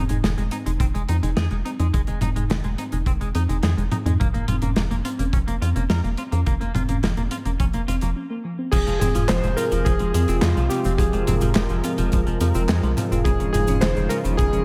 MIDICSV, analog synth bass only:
0, 0, Header, 1, 2, 480
1, 0, Start_track
1, 0, Key_signature, -4, "minor"
1, 0, Tempo, 566038
1, 1642, Time_signature, 4, 2, 24, 8
1, 12421, End_track
2, 0, Start_track
2, 0, Title_t, "Analog synth bass"
2, 0, Program_c, 0, 38
2, 83, Note_on_c, 0, 29, 80
2, 184, Note_off_c, 0, 29, 0
2, 203, Note_on_c, 0, 29, 97
2, 304, Note_off_c, 0, 29, 0
2, 322, Note_on_c, 0, 29, 74
2, 423, Note_off_c, 0, 29, 0
2, 563, Note_on_c, 0, 29, 79
2, 664, Note_off_c, 0, 29, 0
2, 678, Note_on_c, 0, 29, 96
2, 781, Note_off_c, 0, 29, 0
2, 803, Note_on_c, 0, 29, 79
2, 904, Note_off_c, 0, 29, 0
2, 923, Note_on_c, 0, 41, 91
2, 1024, Note_off_c, 0, 41, 0
2, 1043, Note_on_c, 0, 29, 80
2, 1144, Note_off_c, 0, 29, 0
2, 1162, Note_on_c, 0, 41, 100
2, 1263, Note_off_c, 0, 41, 0
2, 1283, Note_on_c, 0, 29, 77
2, 1384, Note_off_c, 0, 29, 0
2, 1523, Note_on_c, 0, 41, 84
2, 1624, Note_off_c, 0, 41, 0
2, 1645, Note_on_c, 0, 29, 96
2, 1745, Note_off_c, 0, 29, 0
2, 1762, Note_on_c, 0, 29, 72
2, 1863, Note_off_c, 0, 29, 0
2, 1881, Note_on_c, 0, 29, 93
2, 1983, Note_off_c, 0, 29, 0
2, 2002, Note_on_c, 0, 29, 78
2, 2103, Note_off_c, 0, 29, 0
2, 2120, Note_on_c, 0, 29, 100
2, 2222, Note_off_c, 0, 29, 0
2, 2241, Note_on_c, 0, 29, 77
2, 2343, Note_off_c, 0, 29, 0
2, 2482, Note_on_c, 0, 29, 80
2, 2583, Note_off_c, 0, 29, 0
2, 2597, Note_on_c, 0, 29, 99
2, 2701, Note_off_c, 0, 29, 0
2, 2720, Note_on_c, 0, 29, 76
2, 2822, Note_off_c, 0, 29, 0
2, 2840, Note_on_c, 0, 41, 91
2, 2942, Note_off_c, 0, 41, 0
2, 2961, Note_on_c, 0, 29, 85
2, 3063, Note_off_c, 0, 29, 0
2, 3080, Note_on_c, 0, 41, 97
2, 3182, Note_off_c, 0, 41, 0
2, 3201, Note_on_c, 0, 29, 78
2, 3303, Note_off_c, 0, 29, 0
2, 3441, Note_on_c, 0, 41, 80
2, 3543, Note_off_c, 0, 41, 0
2, 3570, Note_on_c, 0, 29, 97
2, 3667, Note_off_c, 0, 29, 0
2, 3681, Note_on_c, 0, 29, 75
2, 3783, Note_off_c, 0, 29, 0
2, 3801, Note_on_c, 0, 29, 91
2, 3903, Note_off_c, 0, 29, 0
2, 3921, Note_on_c, 0, 29, 83
2, 4023, Note_off_c, 0, 29, 0
2, 4042, Note_on_c, 0, 29, 99
2, 4143, Note_off_c, 0, 29, 0
2, 4161, Note_on_c, 0, 29, 74
2, 4263, Note_off_c, 0, 29, 0
2, 4402, Note_on_c, 0, 29, 79
2, 4503, Note_off_c, 0, 29, 0
2, 4520, Note_on_c, 0, 29, 100
2, 4622, Note_off_c, 0, 29, 0
2, 4642, Note_on_c, 0, 29, 77
2, 4743, Note_off_c, 0, 29, 0
2, 4763, Note_on_c, 0, 41, 90
2, 4864, Note_off_c, 0, 41, 0
2, 4882, Note_on_c, 0, 29, 86
2, 4983, Note_off_c, 0, 29, 0
2, 5002, Note_on_c, 0, 41, 99
2, 5104, Note_off_c, 0, 41, 0
2, 5123, Note_on_c, 0, 29, 80
2, 5224, Note_off_c, 0, 29, 0
2, 5363, Note_on_c, 0, 41, 86
2, 5464, Note_off_c, 0, 41, 0
2, 5485, Note_on_c, 0, 29, 99
2, 5585, Note_off_c, 0, 29, 0
2, 5603, Note_on_c, 0, 29, 72
2, 5704, Note_off_c, 0, 29, 0
2, 5722, Note_on_c, 0, 29, 93
2, 5823, Note_off_c, 0, 29, 0
2, 5842, Note_on_c, 0, 29, 80
2, 5943, Note_off_c, 0, 29, 0
2, 5962, Note_on_c, 0, 29, 102
2, 6063, Note_off_c, 0, 29, 0
2, 6082, Note_on_c, 0, 29, 75
2, 6183, Note_off_c, 0, 29, 0
2, 6322, Note_on_c, 0, 29, 79
2, 6424, Note_off_c, 0, 29, 0
2, 6444, Note_on_c, 0, 29, 103
2, 6544, Note_off_c, 0, 29, 0
2, 6562, Note_on_c, 0, 29, 80
2, 6663, Note_off_c, 0, 29, 0
2, 6684, Note_on_c, 0, 29, 96
2, 6784, Note_off_c, 0, 29, 0
2, 6803, Note_on_c, 0, 29, 83
2, 6904, Note_off_c, 0, 29, 0
2, 7399, Note_on_c, 0, 29, 102
2, 7502, Note_off_c, 0, 29, 0
2, 7522, Note_on_c, 0, 29, 73
2, 7623, Note_off_c, 0, 29, 0
2, 7641, Note_on_c, 0, 29, 93
2, 7743, Note_off_c, 0, 29, 0
2, 7762, Note_on_c, 0, 29, 82
2, 7863, Note_off_c, 0, 29, 0
2, 7881, Note_on_c, 0, 29, 100
2, 7983, Note_off_c, 0, 29, 0
2, 8001, Note_on_c, 0, 29, 80
2, 8103, Note_off_c, 0, 29, 0
2, 8241, Note_on_c, 0, 29, 79
2, 8343, Note_off_c, 0, 29, 0
2, 8363, Note_on_c, 0, 29, 105
2, 8464, Note_off_c, 0, 29, 0
2, 8482, Note_on_c, 0, 29, 81
2, 8583, Note_off_c, 0, 29, 0
2, 8601, Note_on_c, 0, 41, 95
2, 8703, Note_off_c, 0, 41, 0
2, 8722, Note_on_c, 0, 29, 83
2, 8823, Note_off_c, 0, 29, 0
2, 8842, Note_on_c, 0, 41, 100
2, 8943, Note_off_c, 0, 41, 0
2, 8963, Note_on_c, 0, 36, 80
2, 9064, Note_off_c, 0, 36, 0
2, 9202, Note_on_c, 0, 29, 83
2, 9303, Note_off_c, 0, 29, 0
2, 9315, Note_on_c, 0, 29, 98
2, 9420, Note_off_c, 0, 29, 0
2, 9442, Note_on_c, 0, 29, 73
2, 9543, Note_off_c, 0, 29, 0
2, 9563, Note_on_c, 0, 29, 94
2, 9664, Note_off_c, 0, 29, 0
2, 9681, Note_on_c, 0, 29, 84
2, 9783, Note_off_c, 0, 29, 0
2, 9801, Note_on_c, 0, 29, 97
2, 9903, Note_off_c, 0, 29, 0
2, 9921, Note_on_c, 0, 29, 80
2, 10023, Note_off_c, 0, 29, 0
2, 10162, Note_on_c, 0, 29, 79
2, 10263, Note_off_c, 0, 29, 0
2, 10288, Note_on_c, 0, 29, 104
2, 10386, Note_off_c, 0, 29, 0
2, 10401, Note_on_c, 0, 29, 78
2, 10503, Note_off_c, 0, 29, 0
2, 10522, Note_on_c, 0, 41, 97
2, 10623, Note_off_c, 0, 41, 0
2, 10641, Note_on_c, 0, 29, 84
2, 10743, Note_off_c, 0, 29, 0
2, 10761, Note_on_c, 0, 41, 102
2, 10863, Note_off_c, 0, 41, 0
2, 10881, Note_on_c, 0, 36, 82
2, 10983, Note_off_c, 0, 36, 0
2, 11122, Note_on_c, 0, 29, 86
2, 11223, Note_off_c, 0, 29, 0
2, 11238, Note_on_c, 0, 29, 103
2, 11341, Note_off_c, 0, 29, 0
2, 11362, Note_on_c, 0, 29, 72
2, 11463, Note_off_c, 0, 29, 0
2, 11482, Note_on_c, 0, 29, 94
2, 11583, Note_off_c, 0, 29, 0
2, 11601, Note_on_c, 0, 29, 86
2, 11703, Note_off_c, 0, 29, 0
2, 11722, Note_on_c, 0, 29, 105
2, 11823, Note_off_c, 0, 29, 0
2, 11841, Note_on_c, 0, 29, 78
2, 11943, Note_off_c, 0, 29, 0
2, 12081, Note_on_c, 0, 29, 80
2, 12183, Note_off_c, 0, 29, 0
2, 12202, Note_on_c, 0, 29, 101
2, 12303, Note_off_c, 0, 29, 0
2, 12322, Note_on_c, 0, 29, 82
2, 12421, Note_off_c, 0, 29, 0
2, 12421, End_track
0, 0, End_of_file